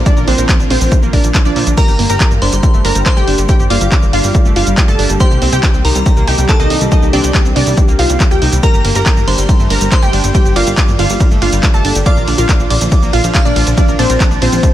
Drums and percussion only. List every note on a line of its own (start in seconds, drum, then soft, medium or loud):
0.06 kick loud
0.06 closed hi-hat medium
0.06 shaker medium
0.17 shaker soft
0.28 open hi-hat loud
0.38 closed hi-hat medium
0.38 shaker medium
0.49 kick loud
0.49 clap loud
0.49 closed hi-hat medium
0.49 shaker medium
0.60 shaker soft
0.70 open hi-hat loud
0.81 open hi-hat medium
0.81 shaker medium
0.92 kick loud
0.92 closed hi-hat medium
0.92 shaker medium
1.03 shaker soft
1.13 kick medium
1.13 open hi-hat loud
1.24 closed hi-hat medium
1.24 shaker medium
1.35 kick loud
1.35 clap loud
1.35 closed hi-hat medium
1.35 shaker medium
1.45 shaker soft
1.56 open hi-hat loud
1.67 closed hi-hat medium
1.67 shaker medium
1.77 kick loud
1.77 closed hi-hat medium
1.77 crash medium
1.77 shaker medium
1.88 shaker soft
1.99 open hi-hat loud
2.10 closed hi-hat medium
2.10 shaker medium
2.20 kick loud
2.20 clap loud
2.20 closed hi-hat medium
2.20 shaker medium
2.31 shaker soft
2.42 open hi-hat loud
2.53 closed hi-hat medium
2.53 shaker medium
2.63 kick loud
2.63 closed hi-hat medium
2.63 shaker medium
2.74 shaker soft
2.85 open hi-hat loud
2.95 closed hi-hat medium
2.95 shaker medium
3.06 kick loud
3.06 clap loud
3.06 closed hi-hat medium
3.06 shaker medium
3.17 shaker soft
3.28 open hi-hat loud
3.38 closed hi-hat medium
3.38 shaker medium
3.49 kick loud
3.49 closed hi-hat medium
3.49 shaker soft
3.60 shaker soft
3.70 open hi-hat loud
3.81 closed hi-hat medium
3.81 shaker medium
3.92 kick loud
3.92 clap loud
3.92 closed hi-hat medium
3.92 shaker medium
4.02 shaker soft
4.13 open hi-hat loud
4.24 open hi-hat medium
4.24 shaker medium
4.35 kick loud
4.35 closed hi-hat medium
4.35 shaker medium
4.45 shaker soft
4.56 open hi-hat loud
4.67 closed hi-hat medium
4.67 shaker medium
4.77 kick loud
4.77 clap loud
4.77 closed hi-hat medium
4.77 shaker medium
4.88 shaker soft
4.99 open hi-hat loud
5.10 closed hi-hat medium
5.10 shaker medium
5.20 kick loud
5.20 closed hi-hat medium
5.20 shaker medium
5.31 shaker soft
5.42 open hi-hat loud
5.53 closed hi-hat medium
5.53 shaker medium
5.63 kick loud
5.63 clap loud
5.63 closed hi-hat medium
5.63 shaker medium
5.74 shaker soft
5.85 open hi-hat loud
5.95 closed hi-hat medium
5.95 shaker medium
6.06 kick loud
6.06 closed hi-hat medium
6.06 shaker medium
6.17 shaker soft
6.27 open hi-hat loud
6.38 closed hi-hat medium
6.38 shaker medium
6.49 kick loud
6.49 clap loud
6.49 closed hi-hat medium
6.49 shaker medium
6.60 shaker soft
6.70 open hi-hat loud
6.81 closed hi-hat medium
6.81 shaker medium
6.92 kick loud
6.92 closed hi-hat medium
6.92 shaker medium
7.02 shaker soft
7.13 open hi-hat loud
7.24 closed hi-hat medium
7.24 shaker medium
7.35 kick loud
7.35 clap loud
7.35 closed hi-hat medium
7.35 shaker medium
7.45 shaker soft
7.56 open hi-hat loud
7.67 open hi-hat medium
7.67 shaker medium
7.77 kick loud
7.77 closed hi-hat medium
7.77 shaker medium
7.88 shaker soft
7.99 open hi-hat loud
8.10 closed hi-hat medium
8.10 shaker medium
8.20 kick loud
8.20 clap loud
8.20 closed hi-hat medium
8.20 shaker medium
8.31 shaker soft
8.42 open hi-hat loud
8.53 closed hi-hat medium
8.53 shaker medium
8.63 kick loud
8.63 closed hi-hat medium
8.63 ride medium
8.63 shaker medium
8.74 shaker soft
8.85 open hi-hat loud
8.85 ride medium
8.95 closed hi-hat medium
8.95 shaker medium
9.06 kick loud
9.06 clap loud
9.06 closed hi-hat medium
9.06 ride medium
9.06 shaker medium
9.17 shaker soft
9.28 open hi-hat loud
9.28 ride medium
9.38 closed hi-hat medium
9.38 shaker medium
9.49 kick loud
9.49 closed hi-hat medium
9.49 ride medium
9.49 shaker medium
9.60 shaker soft
9.70 open hi-hat loud
9.70 ride medium
9.81 closed hi-hat medium
9.81 shaker medium
9.92 kick loud
9.92 clap loud
9.92 closed hi-hat medium
9.92 ride medium
9.92 shaker medium
10.02 shaker soft
10.13 open hi-hat loud
10.13 ride medium
10.24 closed hi-hat medium
10.24 shaker medium
10.35 kick loud
10.35 closed hi-hat medium
10.35 ride medium
10.35 shaker medium
10.45 shaker soft
10.56 open hi-hat loud
10.56 ride medium
10.67 closed hi-hat medium
10.67 shaker medium
10.77 kick loud
10.77 clap loud
10.77 closed hi-hat medium
10.77 ride medium
10.77 shaker medium
10.88 shaker soft
10.99 open hi-hat loud
10.99 ride medium
11.10 open hi-hat medium
11.10 shaker medium
11.20 kick loud
11.20 closed hi-hat medium
11.20 ride medium
11.20 shaker medium
11.31 shaker soft
11.42 open hi-hat loud
11.42 ride medium
11.53 closed hi-hat medium
11.53 shaker medium
11.63 kick loud
11.63 clap loud
11.63 closed hi-hat medium
11.63 ride medium
11.63 shaker medium
11.74 shaker soft
11.85 open hi-hat loud
11.85 ride medium
11.95 closed hi-hat medium
11.95 shaker medium
12.06 kick loud
12.06 closed hi-hat medium
12.06 ride medium
12.06 shaker medium
12.17 shaker soft
12.28 open hi-hat loud
12.28 ride medium
12.38 closed hi-hat medium
12.38 shaker medium
12.49 kick loud
12.49 clap loud
12.49 closed hi-hat medium
12.49 ride medium
12.49 shaker medium
12.60 shaker soft
12.70 open hi-hat loud
12.70 ride medium
12.81 closed hi-hat medium
12.81 shaker medium
12.92 kick loud
12.92 closed hi-hat medium
12.92 ride medium
12.92 shaker medium
13.03 shaker soft
13.13 open hi-hat loud
13.13 ride medium
13.24 closed hi-hat medium
13.24 shaker medium
13.35 kick loud
13.35 clap loud
13.35 closed hi-hat medium
13.35 ride medium
13.35 shaker medium
13.45 shaker soft
13.56 open hi-hat loud
13.56 ride medium
13.67 closed hi-hat medium
13.67 shaker medium
13.77 kick loud
13.77 closed hi-hat medium
13.77 ride medium
13.77 shaker medium
13.88 shaker soft
13.99 open hi-hat loud
13.99 ride medium
14.10 closed hi-hat medium
14.10 shaker medium
14.20 kick loud
14.20 clap loud
14.20 closed hi-hat medium
14.20 ride medium
14.20 shaker medium
14.31 shaker soft
14.42 open hi-hat loud
14.42 ride medium
14.53 open hi-hat medium
14.53 shaker medium
14.63 kick loud
14.63 closed hi-hat medium
14.63 ride medium
14.63 shaker medium